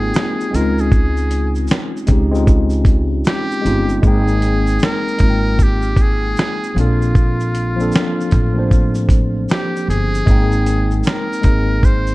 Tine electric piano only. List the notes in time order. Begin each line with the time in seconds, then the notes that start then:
Already playing: G#3 A#3 C4 D#4 F4 G5
0.51 G#3 C4 C#4
0.55 D#4 F4
2.07 G#3 C4 C#4
2.11 D#4 G4
2.31 G#3 C4 C#4
2.35 D#4 F4
3.62 G#3 C4 C#4
3.66 D#4 F4
4.02 G#3 A#3 C4
4.06 D#4 G5
5.18 G#3 A#3 C4 D#4
5.23 F4
5.30 G5
6.75 F3 A#3 C4
6.79 D4 A4
7.76 F3 A#3 C4 D4
7.82 A4
8.54 F3 A#3 C4
8.58 D4 C5
10.26 G#3 A#3 C4 D#4
10.31 G5
11.41 G#3 A#3 C4 D#4
11.46 G#4